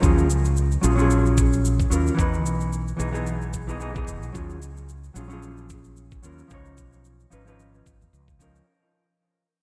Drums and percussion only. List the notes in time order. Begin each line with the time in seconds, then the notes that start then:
0.03 kick, shaker
0.18 shaker
0.30 shaker
0.45 shaker
0.57 shaker
0.72 shaker
0.83 shaker
0.99 shaker
1.10 shaker
1.26 shaker
1.38 kick, shaker
1.53 shaker
1.65 shaker
1.80 kick, shaker
1.92 shaker
2.07 shaker
2.19 kick, shaker
2.34 shaker
2.46 shaker
2.61 shaker
2.73 shaker
2.88 shaker
3.00 shaker
3.15 shaker
3.27 shaker
3.42 shaker
3.53 kick, shaker
3.69 shaker
3.80 shaker
3.96 kick, shaker
4.08 shaker
4.23 shaker
4.35 kick, shaker
4.50 shaker
4.62 shaker
4.77 shaker
4.89 shaker
5.04 shaker
5.16 shaker
5.30 shaker
5.43 shaker
5.57 shaker
5.70 kick, shaker
5.84 shaker
5.97 shaker
6.11 kick, shaker
6.23 shaker
6.38 shaker
6.50 kick, shaker
6.65 shaker
6.77 kick, shaker
6.93 shaker
7.05 shaker
7.20 shaker
7.32 shaker
7.47 shaker
7.59 shaker
7.75 shaker
7.86 kick, shaker
8.02 shaker
8.14 shaker
8.28 kick, shaker
8.40 kick, shaker
8.56 shaker